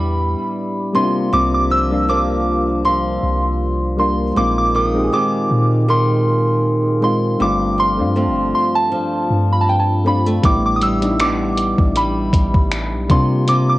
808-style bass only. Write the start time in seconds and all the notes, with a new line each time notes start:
Already playing: E2
1.33 C2
3.23 C2
4.37 A#1
5.51 A#2
7.41 G1
7.99 G2
8.27 G1
9.31 G2
10.44 A1
11.79 A1
12.33 A1
12.93 B1
13.10 C3